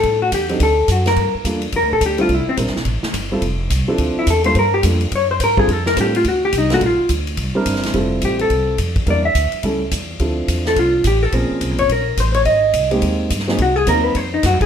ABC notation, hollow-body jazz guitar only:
X:1
M:4/4
L:1/8
Q:"Swing" 1/4=212
K:F
V:1 name="Hollow-body jazz guitar"
A _G =G2 A2 ^F B- | B z3 B A G F | E C z6 | z4 z E A c |
B G z2 _d c B _A | A B G F _G =G _E _G | F2 z6 | z2 G A3 z2 |
d e3 z4 | z3 A F2 G A | B3 _d B2 c d | _e3 z4 z |
_G _A B =B c _E G A |]